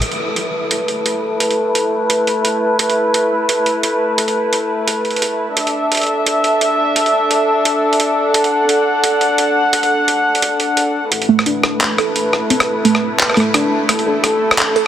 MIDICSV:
0, 0, Header, 1, 5, 480
1, 0, Start_track
1, 0, Tempo, 346821
1, 26, Time_signature, 4, 2, 24, 8
1, 20584, End_track
2, 0, Start_track
2, 0, Title_t, "String section"
2, 0, Program_c, 0, 48
2, 23, Note_on_c, 0, 71, 76
2, 26, Note_on_c, 0, 64, 63
2, 28, Note_on_c, 0, 57, 66
2, 7649, Note_off_c, 0, 71, 0
2, 7651, Note_off_c, 0, 57, 0
2, 7651, Note_off_c, 0, 64, 0
2, 7702, Note_on_c, 0, 62, 67
2, 7702, Note_on_c, 0, 69, 63
2, 7703, Note_on_c, 0, 76, 76
2, 11506, Note_off_c, 0, 76, 0
2, 11549, Note_on_c, 0, 78, 79
2, 15328, Note_off_c, 0, 62, 0
2, 15329, Note_off_c, 0, 69, 0
2, 15349, Note_off_c, 0, 78, 0
2, 15377, Note_on_c, 0, 57, 72
2, 15377, Note_on_c, 0, 64, 62
2, 15378, Note_on_c, 0, 71, 76
2, 19183, Note_off_c, 0, 71, 0
2, 19222, Note_on_c, 0, 69, 82
2, 20584, Note_off_c, 0, 57, 0
2, 20584, Note_off_c, 0, 64, 0
2, 20584, Note_off_c, 0, 69, 0
2, 20584, End_track
3, 0, Start_track
3, 0, Title_t, "Synth pluck"
3, 0, Program_c, 1, 84
3, 15623, Note_on_c, 1, 57, 102
3, 15854, Note_off_c, 1, 57, 0
3, 15864, Note_on_c, 1, 62, 105
3, 16565, Note_off_c, 1, 62, 0
3, 16584, Note_on_c, 1, 69, 77
3, 16815, Note_off_c, 1, 69, 0
3, 17304, Note_on_c, 1, 60, 82
3, 17765, Note_off_c, 1, 60, 0
3, 17782, Note_on_c, 1, 57, 102
3, 18484, Note_off_c, 1, 57, 0
3, 18504, Note_on_c, 1, 57, 101
3, 18735, Note_off_c, 1, 57, 0
3, 18745, Note_on_c, 1, 62, 97
3, 19225, Note_off_c, 1, 62, 0
3, 19464, Note_on_c, 1, 69, 75
3, 19695, Note_off_c, 1, 69, 0
3, 20426, Note_on_c, 1, 69, 75
3, 20584, Note_off_c, 1, 69, 0
3, 20584, End_track
4, 0, Start_track
4, 0, Title_t, "Detuned saw bass"
4, 0, Program_c, 2, 39
4, 15386, Note_on_c, 2, 33, 95
4, 17186, Note_off_c, 2, 33, 0
4, 17305, Note_on_c, 2, 33, 97
4, 17785, Note_on_c, 2, 36, 81
4, 17806, Note_off_c, 2, 33, 0
4, 18973, Note_off_c, 2, 36, 0
4, 19224, Note_on_c, 2, 33, 95
4, 20584, Note_off_c, 2, 33, 0
4, 20584, End_track
5, 0, Start_track
5, 0, Title_t, "Drums"
5, 24, Note_on_c, 9, 42, 73
5, 159, Note_off_c, 9, 42, 0
5, 159, Note_on_c, 9, 42, 34
5, 297, Note_off_c, 9, 42, 0
5, 503, Note_on_c, 9, 42, 59
5, 641, Note_off_c, 9, 42, 0
5, 981, Note_on_c, 9, 42, 76
5, 1119, Note_off_c, 9, 42, 0
5, 1222, Note_on_c, 9, 42, 35
5, 1360, Note_off_c, 9, 42, 0
5, 1463, Note_on_c, 9, 42, 62
5, 1601, Note_off_c, 9, 42, 0
5, 1942, Note_on_c, 9, 42, 77
5, 2080, Note_off_c, 9, 42, 0
5, 2083, Note_on_c, 9, 42, 35
5, 2222, Note_off_c, 9, 42, 0
5, 2423, Note_on_c, 9, 42, 61
5, 2562, Note_off_c, 9, 42, 0
5, 2903, Note_on_c, 9, 42, 76
5, 3042, Note_off_c, 9, 42, 0
5, 3146, Note_on_c, 9, 42, 35
5, 3285, Note_off_c, 9, 42, 0
5, 3387, Note_on_c, 9, 42, 63
5, 3525, Note_off_c, 9, 42, 0
5, 3864, Note_on_c, 9, 42, 75
5, 4002, Note_off_c, 9, 42, 0
5, 4007, Note_on_c, 9, 42, 34
5, 4146, Note_off_c, 9, 42, 0
5, 4348, Note_on_c, 9, 42, 60
5, 4487, Note_off_c, 9, 42, 0
5, 4829, Note_on_c, 9, 42, 75
5, 4968, Note_off_c, 9, 42, 0
5, 5068, Note_on_c, 9, 42, 34
5, 5206, Note_off_c, 9, 42, 0
5, 5306, Note_on_c, 9, 42, 64
5, 5445, Note_off_c, 9, 42, 0
5, 5786, Note_on_c, 9, 42, 69
5, 5923, Note_off_c, 9, 42, 0
5, 5923, Note_on_c, 9, 42, 32
5, 6061, Note_off_c, 9, 42, 0
5, 6265, Note_on_c, 9, 42, 55
5, 6403, Note_off_c, 9, 42, 0
5, 6748, Note_on_c, 9, 42, 70
5, 6886, Note_off_c, 9, 42, 0
5, 6987, Note_on_c, 9, 42, 15
5, 7066, Note_off_c, 9, 42, 0
5, 7066, Note_on_c, 9, 42, 20
5, 7147, Note_off_c, 9, 42, 0
5, 7147, Note_on_c, 9, 42, 27
5, 7225, Note_off_c, 9, 42, 0
5, 7225, Note_on_c, 9, 42, 60
5, 7363, Note_off_c, 9, 42, 0
5, 7705, Note_on_c, 9, 42, 68
5, 7843, Note_off_c, 9, 42, 0
5, 7846, Note_on_c, 9, 42, 32
5, 7985, Note_off_c, 9, 42, 0
5, 8188, Note_on_c, 9, 42, 54
5, 8231, Note_off_c, 9, 42, 0
5, 8231, Note_on_c, 9, 42, 44
5, 8266, Note_off_c, 9, 42, 0
5, 8266, Note_on_c, 9, 42, 35
5, 8325, Note_off_c, 9, 42, 0
5, 8325, Note_on_c, 9, 42, 29
5, 8349, Note_off_c, 9, 42, 0
5, 8349, Note_on_c, 9, 42, 25
5, 8395, Note_off_c, 9, 42, 0
5, 8395, Note_on_c, 9, 42, 21
5, 8534, Note_off_c, 9, 42, 0
5, 8671, Note_on_c, 9, 42, 71
5, 8809, Note_off_c, 9, 42, 0
5, 8914, Note_on_c, 9, 42, 32
5, 9052, Note_off_c, 9, 42, 0
5, 9152, Note_on_c, 9, 42, 56
5, 9290, Note_off_c, 9, 42, 0
5, 9633, Note_on_c, 9, 42, 69
5, 9771, Note_off_c, 9, 42, 0
5, 9772, Note_on_c, 9, 42, 31
5, 9911, Note_off_c, 9, 42, 0
5, 10113, Note_on_c, 9, 42, 56
5, 10251, Note_off_c, 9, 42, 0
5, 10593, Note_on_c, 9, 42, 71
5, 10731, Note_off_c, 9, 42, 0
5, 10971, Note_on_c, 9, 42, 33
5, 11068, Note_off_c, 9, 42, 0
5, 11068, Note_on_c, 9, 42, 60
5, 11207, Note_off_c, 9, 42, 0
5, 11548, Note_on_c, 9, 42, 72
5, 11683, Note_off_c, 9, 42, 0
5, 11683, Note_on_c, 9, 42, 33
5, 11822, Note_off_c, 9, 42, 0
5, 12027, Note_on_c, 9, 42, 57
5, 12165, Note_off_c, 9, 42, 0
5, 12506, Note_on_c, 9, 42, 77
5, 12644, Note_off_c, 9, 42, 0
5, 12747, Note_on_c, 9, 42, 35
5, 12886, Note_off_c, 9, 42, 0
5, 12986, Note_on_c, 9, 42, 61
5, 13124, Note_off_c, 9, 42, 0
5, 13467, Note_on_c, 9, 42, 77
5, 13605, Note_off_c, 9, 42, 0
5, 13606, Note_on_c, 9, 42, 34
5, 13744, Note_off_c, 9, 42, 0
5, 13951, Note_on_c, 9, 42, 60
5, 14089, Note_off_c, 9, 42, 0
5, 14323, Note_on_c, 9, 42, 35
5, 14427, Note_off_c, 9, 42, 0
5, 14427, Note_on_c, 9, 42, 76
5, 14566, Note_off_c, 9, 42, 0
5, 14667, Note_on_c, 9, 42, 34
5, 14805, Note_off_c, 9, 42, 0
5, 14906, Note_on_c, 9, 42, 62
5, 15045, Note_off_c, 9, 42, 0
5, 15386, Note_on_c, 9, 42, 81
5, 15523, Note_off_c, 9, 42, 0
5, 15523, Note_on_c, 9, 42, 37
5, 15661, Note_off_c, 9, 42, 0
5, 15762, Note_on_c, 9, 37, 50
5, 15863, Note_on_c, 9, 42, 64
5, 15900, Note_off_c, 9, 37, 0
5, 16001, Note_off_c, 9, 42, 0
5, 16103, Note_on_c, 9, 37, 80
5, 16241, Note_off_c, 9, 37, 0
5, 16343, Note_on_c, 9, 39, 117
5, 16343, Note_on_c, 9, 42, 80
5, 16481, Note_off_c, 9, 39, 0
5, 16481, Note_off_c, 9, 42, 0
5, 16586, Note_on_c, 9, 37, 51
5, 16586, Note_on_c, 9, 42, 35
5, 16724, Note_off_c, 9, 37, 0
5, 16724, Note_off_c, 9, 42, 0
5, 16825, Note_on_c, 9, 42, 66
5, 16964, Note_off_c, 9, 42, 0
5, 17067, Note_on_c, 9, 37, 55
5, 17206, Note_off_c, 9, 37, 0
5, 17304, Note_on_c, 9, 42, 82
5, 17441, Note_off_c, 9, 42, 0
5, 17441, Note_on_c, 9, 37, 78
5, 17441, Note_on_c, 9, 42, 37
5, 17580, Note_off_c, 9, 37, 0
5, 17580, Note_off_c, 9, 42, 0
5, 17784, Note_on_c, 9, 42, 64
5, 17921, Note_on_c, 9, 37, 53
5, 17922, Note_off_c, 9, 42, 0
5, 18059, Note_off_c, 9, 37, 0
5, 18261, Note_on_c, 9, 39, 126
5, 18261, Note_on_c, 9, 42, 84
5, 18400, Note_off_c, 9, 39, 0
5, 18400, Note_off_c, 9, 42, 0
5, 18401, Note_on_c, 9, 37, 49
5, 18467, Note_off_c, 9, 37, 0
5, 18467, Note_on_c, 9, 37, 41
5, 18503, Note_on_c, 9, 42, 38
5, 18547, Note_off_c, 9, 37, 0
5, 18547, Note_on_c, 9, 37, 33
5, 18641, Note_off_c, 9, 42, 0
5, 18685, Note_off_c, 9, 37, 0
5, 18742, Note_on_c, 9, 37, 77
5, 18742, Note_on_c, 9, 42, 68
5, 18880, Note_off_c, 9, 37, 0
5, 18880, Note_off_c, 9, 42, 0
5, 19223, Note_on_c, 9, 37, 50
5, 19223, Note_on_c, 9, 42, 80
5, 19361, Note_off_c, 9, 42, 0
5, 19361, Note_on_c, 9, 42, 35
5, 19362, Note_off_c, 9, 37, 0
5, 19499, Note_off_c, 9, 42, 0
5, 19704, Note_on_c, 9, 37, 51
5, 19704, Note_on_c, 9, 42, 65
5, 19842, Note_off_c, 9, 37, 0
5, 19842, Note_off_c, 9, 42, 0
5, 20084, Note_on_c, 9, 37, 81
5, 20184, Note_on_c, 9, 39, 125
5, 20184, Note_on_c, 9, 42, 79
5, 20223, Note_off_c, 9, 37, 0
5, 20322, Note_off_c, 9, 39, 0
5, 20322, Note_off_c, 9, 42, 0
5, 20427, Note_on_c, 9, 42, 38
5, 20566, Note_off_c, 9, 42, 0
5, 20584, End_track
0, 0, End_of_file